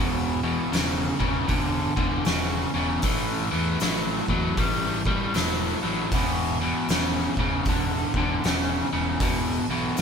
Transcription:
Already playing: E1 E2 B2
0.43 E2 B2
0.72 E1 E2 C#3, snare, open hi-hat
1.19 E1 E2 C#3, kick
1.48 E1 E2 D3, kick, open hi-hat
1.97 E1 E2 D3, kick
2.25 E1 E2 C#3, snare, open hi-hat
2.74 E1 E2 C#3
3.02 A1 A2 E3, kick, open hi-hat
3.51 E2 A2 E3
3.80 A1 A2 F#3, snare, open hi-hat
4.28 E2 A2 F#3, kick
4.57 A1 A2 G3, kick, open hi-hat
5.06 A2 G3, kick
5.34 E1 A2 F#3, snare, open hi-hat
5.83 A1 A2 F#3
6.11 E1 E2 B2, kick, open hi-hat
6.61 E2 B2
6.89 E1 E2 C#3, snare, open hi-hat
7.37 E1 E2 C#3, kick
7.65 E1 E2 D3, kick, open hi-hat
8.14 E1 E2 D3, kick
8.44 E1 E2 C#3, snare, open hi-hat
8.93 E1 E2 C#3
9.20 E1 E2 B2, kick, open hi-hat
9.68 B1 E2 B2
9.97 snare, open hi-hat

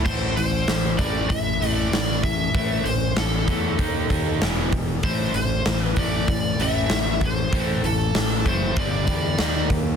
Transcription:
0.05 A1 A2 E3 A3 C5, kick, crash
0.36 A1 A2 E3 C5, open hi-hat
0.68 A1 A2 E3, snare, open hi-hat
0.99 A1 A2 E3 A3 D5, kick, open hi-hat
1.29 A1 A2 E3 E5, kick, open hi-hat
1.61 A1 A2 E3 A3, open hi-hat
1.74 D5
1.92 A1 A2 E3, snare, open hi-hat
2.23 A2 E3 E5, kick, open hi-hat
2.54 A1 A2 E3 A3, kick, open hi-hat
2.85 A1 A2 E3 C5, open hi-hat
3.16 A1 A2 E3 A4, snare, open hi-hat
3.47 E2 A2 E3 A3, kick, open hi-hat
3.78 D#2 D#3 A#3 D#4, kick, open hi-hat
4.09 D#2 D#3 A#3 D#4, kick, open hi-hat
4.40 E1 E2 B2 E3, snare, open hi-hat
4.73 E2 B2, kick, open hi-hat
5.03 A1 A2 E3 A3 C5, kick, open hi-hat
5.34 A1 A2 E3 C5, open hi-hat
5.66 A1 A2 E3, snare, open hi-hat
5.80 B4
5.96 A1 A2 E3 A3 D5, kick, open hi-hat
6.28 A1 A2 E3, kick, open hi-hat
6.59 A1 A2 E3 A3 E5, open hi-hat
6.90 A1 A2 E3, snare, open hi-hat
7.21 A2 E3 C5, kick, open hi-hat
7.51 A1 A2 E3 A3, kick, open hi-hat
7.82 A1 A2 E3 A4, open hi-hat
8.14 A1 A2 E3, snare, open hi-hat
8.45 F#1 A2 E3 A3 C5, kick, open hi-hat
8.76 G1 G2 D3 G3 D5, kick, open hi-hat
9.07 E2 G2 D3 G3, kick, open hi-hat
9.38 D#2 D#3 A#3 D#4, snare, open hi-hat
9.70 D#3 A#3, kick, open hi-hat

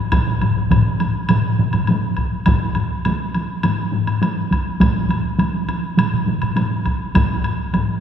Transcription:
0.12 taiko, taiko low-mid, taiko mid, taiko high, high woodblock
0.27 taiko low-mid, taiko mid, taiko high
0.41 taiko low-mid, taiko mid, taiko high, high woodblock
0.56 taiko low-mid, taiko mid, taiko high
0.70 taiko, taiko low-mid, taiko mid, taiko high, high woodblock
0.85 taiko high
1.00 taiko high, high woodblock
1.15 taiko high
1.29 taiko low-mid, taiko mid, taiko high, high woodblock
1.45 taiko high
1.59 taiko low-mid, taiko mid, taiko high
1.73 taiko low-mid, taiko mid, taiko high, high woodblock
1.87 taiko high, high woodblock
2.04 taiko high
2.17 taiko, taiko high, high woodblock
2.32 taiko high
2.46 taiko, taiko low-mid, taiko high, high woodblock
2.61 taiko high
2.75 taiko high, high woodblock
2.91 taiko high
3.05 taiko high, high woodblock
3.21 taiko high
3.34 taiko high, high woodblock
3.50 taiko high
3.63 taiko low-mid, taiko high, high woodblock
3.78 taiko low-mid, taiko high
3.92 taiko low-mid, taiko high
4.07 taiko low-mid, high woodblock
4.22 taiko high, high woodblock
4.37 taiko high
4.51 taiko, taiko high, high woodblock
4.66 taiko high
4.80 taiko, taiko mid, taiko high, high woodblock
4.95 taiko high
5.09 taiko high, high woodblock
5.24 taiko high
5.39 taiko high, high woodblock
5.54 taiko high
5.69 taiko high, high woodblock
5.83 taiko high
5.97 taiko mid, taiko high, high woodblock
6.13 taiko mid, taiko high
6.26 taiko mid, taiko high
6.42 taiko mid, high woodblock
6.56 taiko high, high woodblock
6.71 taiko high
6.85 taiko, taiko high, high woodblock
7.00 taiko high
7.15 taiko, taiko low-mid, taiko high, high woodblock
7.29 taiko high
7.44 high woodblock
7.59 taiko high
7.73 taiko low-mid, taiko high, high woodblock
7.88 taiko high

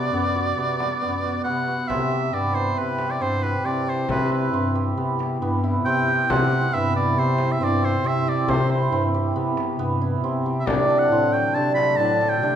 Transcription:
Already playing: B3 F#4 D5
0.13 F#2 B3, frame drum
0.35 F#4
0.56 C3 B3, frame drum
0.79 F#4, frame drum
1.01 F#2 B3
1.24 F#4, frame drum
1.44 C3 B3 F#5
1.68 F#4
1.88 C3 C4 E4 E5, frame drum
2.11 G4, frame drum
2.33 G2 B3 D5, frame drum
2.55 E4 C5
2.77 C3 C4 B4
2.99 G4, frame drum
3.11 D5
3.21 G2 C4 C5
3.43 G4 B4
3.63 C3 C4 D5, frame drum
3.87 G4 C5
4.08 C3 C4 B4, frame drum
4.31 E4 B4, frame drum
4.52 G2 C4, frame drum
4.75 G4
4.96 C3 B3
5.19 G4, frame drum
5.40 G2 B3
5.64 E4, frame drum
5.85 C3 C4 G5, frame drum
6.08 G4
6.29 C3 C4 F#5, frame drum
6.52 G4
6.73 G2 B3 E5, frame drum
6.95 E4 D5
7.17 C3 C4 C5
7.38 G4, frame drum
7.52 E5
7.60 G2 C4 D5
7.83 G4 C5
8.04 C3 C4 E5, frame drum
8.26 G4 D5
8.46 C3 C4 C5, frame drum
8.70 E4 C5
8.91 G2 C4
9.14 G4
9.35 C3 B3
9.57 G4, frame drum
9.79 G2 B3
10.01 E4, frame drum
10.23 C3 C4
10.45 G4, frame drum
10.60 E5
10.66 C3 D3 F#3 A3 D4 D5, frame drum
10.90 A4, frame drum
10.99 F#5
11.10 A2 C4, frame drum
11.33 F#4 G5
11.55 C3 D4 A5
11.75 A4 B5, frame drum
11.97 A2 D4 A5
12.21 A4, frame drum
12.29 G5
12.42 C3 D4, frame drum

